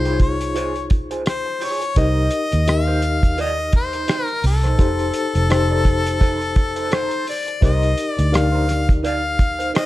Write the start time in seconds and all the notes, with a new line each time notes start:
Already playing: C2 D#4 F4 G#4 C5
0.05 F4 G#4 C#5, closed hi-hat
0.20 C#5, kick, closed hi-hat
0.40 muted clean electric guitar stroke, closed hi-hat
0.54 F4 G#4 C5, closed hi-hat
0.76 closed hi-hat
0.90 muted clean electric guitar stroke, kick, closed hi-hat
1.11 F4 G#4 C5, closed hi-hat
1.26 C5, cross-stick, closed hi-hat
1.46 muted clean electric guitar stroke
1.60 F4 G#4 C#5, open hi-hat
1.81 muted clean electric guitar stroke, closed hi-hat
1.96 C2 D#4 G4 A#4 C5 D#5, kick, closed hi-hat
2.31 closed hi-hat
2.52 D#2, muted clean electric guitar stroke, closed hi-hat
2.67 D#4 G4 A#4 D#5 F5, muted clean electric guitar stroke, cross-stick, closed hi-hat
2.87 D#4 A#4 C5
3.02 muted clean electric guitar stroke, closed hi-hat
3.23 muted clean electric guitar stroke, kick, closed hi-hat
3.37 D#4 A#4 D5 D#5, closed hi-hat
3.72 C5, muted clean electric guitar stroke, kick, closed hi-hat
3.93 D#4 A#4 C5, closed hi-hat
4.08 D#4 A#4 C5, cross-stick, closed hi-hat
4.25 A#4, closed hi-hat
4.43 C2 A4, muted clean electric guitar stroke, open hi-hat
4.63 D#4 A#4 C5, cross-stick, closed hi-hat
4.78 F1 D#4 G4 A4 C5, kick, closed hi-hat
4.99 closed hi-hat
5.14 closed hi-hat
5.35 F1, muted clean electric guitar stroke, closed hi-hat
5.50 D#4 G4 A4 C5, muted clean electric guitar stroke, cross-stick, closed hi-hat
5.71 D#4 A4 D5
5.85 muted clean electric guitar stroke, kick, closed hi-hat
6.05 muted clean electric guitar stroke, closed hi-hat
6.20 D#4 A4 C5, kick, closed hi-hat
6.41 closed hi-hat
6.55 muted clean electric guitar stroke, kick, closed hi-hat
6.76 D#4 A4 C5, closed hi-hat
6.90 D#4 A4 C5, cross-stick, closed hi-hat
7.11 closed hi-hat
7.26 D5, muted clean electric guitar stroke, open hi-hat
7.47 muted clean electric guitar stroke, closed hi-hat
7.61 C2 D#4 G4 A#4 C5 D#5, kick, closed hi-hat
7.83 closed hi-hat
7.98 closed hi-hat
8.11 D5
8.18 D2, muted clean electric guitar stroke, closed hi-hat
8.32 D#4 G4 A#4 D5 F5, muted clean electric guitar stroke, cross-stick, closed hi-hat
8.52 D#4 A#4 C5
8.68 muted clean electric guitar stroke, cross-stick, closed hi-hat
8.88 muted clean electric guitar stroke, kick, closed hi-hat
9.03 D#4 A#4 D5 F5, closed hi-hat
9.39 muted clean electric guitar stroke, kick, closed hi-hat
9.59 D#4 A#4 C5, closed hi-hat
9.74 D#4 A#4 C5 D#5, cross-stick, closed hi-hat